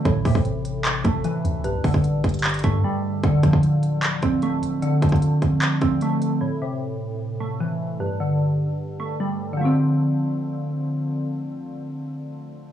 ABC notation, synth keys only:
X:1
M:4/4
L:1/8
Q:1/4=151
K:Dm
V:1 name="Synth keys" clef=bass
A,, C,4 A, E,2 | G,, D,4 A, G,2 | D, F,4 C A,2 | D, F,4 C A,2 |
A,, C,4 A, E,2 | G,, D,4 A, G,2 | [D,F,A,C]8- | [D,F,A,C]8 |]